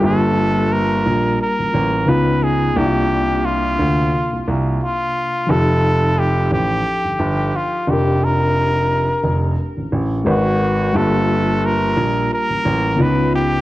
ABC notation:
X:1
M:4/4
L:1/16
Q:"Swing 16ths" 1/4=88
K:Cmix
V:1 name="Muted trumpet"
A4 B4 B4 =B2 ^G2 | G4 F6 z2 F4 | A4 G2 G6 F2 G2 | B8 z4 _G4 |
A4 B4 B4 =B2 G2 |]
V:2 name="Reed electric piano"
[G,B,FG]12 [^C,=B,^D^E]4 | [C,B,DEF]16 | [F,_EGA]12- [F,EGA]2 [DGB]2- | [DGB]12 [_A,_GB_c]4 |
[G,B,FG]12 [^C,=B,^D^E]4 |]
V:3 name="Grand piano" clef=bass
G,,,6 B,,,2 z A,,, A,,,2 ^C,,4 | C,,6 D,,2 z C,, C,,2 z4 | F,,,6 A,,,2 z G,,, G,,,2 z2 F,,,2- | F,,,6 F,,,2 z A,,, A,,,2 _A,,,4 |
G,,,6 B,,,2 z A,,, A,,,2 ^C,,4 |]